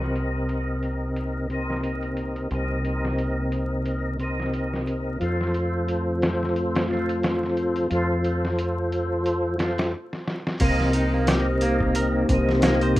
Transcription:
Already playing: C2 C3 A#3 C4 D#4 G4 A#4 C5 D#5
0.02 snare
0.16 closed hi-hat
0.49 closed hi-hat
0.83 closed hi-hat
1.16 closed hi-hat
1.49 C3 C4 A#4, closed hi-hat
1.54 D#5
1.70 snare
1.83 closed hi-hat
2.03 closed hi-hat
2.17 closed hi-hat
2.36 closed hi-hat
2.51 C2 C3 C4 A#4, closed hi-hat
2.55 D#5
2.85 closed hi-hat
3.05 snare
3.18 closed hi-hat
3.52 closed hi-hat
3.86 closed hi-hat
4.19 C3 C4 A#4, closed hi-hat
4.23 D#5
4.40 snare
4.53 closed hi-hat
4.74 snare
4.87 closed hi-hat
5.20 F2 F3 A3 C4 F4 A4, closed hi-hat
5.24 C5
5.41 snare
5.54 closed hi-hat
5.88 closed hi-hat
6.22 snare, closed hi-hat
6.43 snare
6.56 closed hi-hat
6.75 snare, closed hi-hat
6.88 F3 F4 A4, snare
6.93 C5
7.09 closed hi-hat
7.23 snare, closed hi-hat
7.43 snare
7.57 closed hi-hat
7.76 closed hi-hat
7.90 F2 F3 F4 A4, closed hi-hat
7.95 C5
8.24 closed hi-hat
8.45 snare
8.58 closed hi-hat
8.92 closed hi-hat
9.26 closed hi-hat
9.58 F3 F4 A4, snare, closed hi-hat
9.63 C5
9.78 snare, closed hi-hat
10.13 snare
10.27 snare
10.47 snare
10.60 C2 C3 A#3 C4 D#4 G4 A#4 C5, kick, closed hi-hat, crash
10.64 D#5
10.80 snare
10.93 D#4, closed hi-hat
11.14 A#3
11.27 G4, snare, closed hi-hat
11.61 A#3, closed hi-hat
11.80 kick
11.95 A#4, closed hi-hat
12.29 C2 C3 C4 A#4, kick, closed hi-hat
12.34 D#5
12.49 snare
12.62 A#3, snare, closed hi-hat
12.81 C5, closed hi-hat
12.96 kick, closed hi-hat

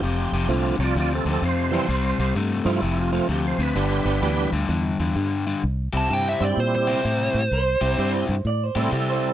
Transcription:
Already playing: G4
0.02 F1 F2 C3
0.32 F1 F2 C3
0.48 C2 F2 D3 F3 A3 C4 F4
0.79 C2 F2 C3 C#5
0.84 F4 D5
0.95 D2 F2 C3 F4
1.00 D5
1.15 C4 A4
1.25 D2 F2 C3
1.30 C4 A4
1.42 F2 C3 C5
1.71 F2 C3 E3 G3 C4 E4
1.88 C2 C3 G3
2.19 C2 C3 G3
2.35 G2 C3 A3
2.65 G2 C3 F3 G3 A3 C4 D#4 F4
2.70 E4
2.82 F1 F2 C3
3.01 F4
3.12 F2 C3 F3 A3 C4 F4
3.29 D2 F2 C3 G4
3.47 C5
3.58 D2 F2 C3
3.63 B4
3.75 G1 G2 D3 G3 B3 D4 G4
4.05 G1 G2 D3
4.22 D2 G2 E3 G3 B3 D4 G4
4.52 D2 G2 D3
4.69 E2 G2 D3
4.99 E2 G2 D3
5.16 G2 D3
5.47 G2 D3
5.63 C2
5.93 C2 C3 C4 E4 G4
5.97 A5
6.10 G2 C3 C4 E4 G4 G5
6.29 E5
6.40 G2 G3 C4 E4 G4
6.45 D5
6.57 A#2 C5
6.75 C5
6.87 C3 C4 E4 G4
7.04 A2 C3 C4 E4 G4
7.34 A2
7.51 C2 C5
7.81 C2 C3 C4 E4 G4
7.98 G2 C3 G3 C4 E4 G4
8.29 G2
8.45 A2 D5
8.64 C5
8.76 A2 C3 G3 C4 E4 G4 A4
8.92 C3 C4 E4 G4
9.10 C5

